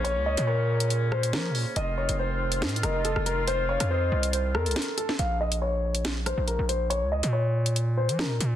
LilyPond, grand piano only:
\new Staff \with { instrumentName = "Grand piano" } { \time 4/4 \key bes \minor \tempo 4 = 140 des''8 ees''8 des''4 r8 c''8 bes'8 r8 | ees''8 des''8 c''4 r8 bes'8 a'8 bes'8 | c''8 des''8 c''4 r8 bes'4 a'8 | f''8 ees''8 des''4 r8 c''8 bes'8 c''8 |
des''8 ees''8 des''4 r8 c''8 bes'8 r8 | }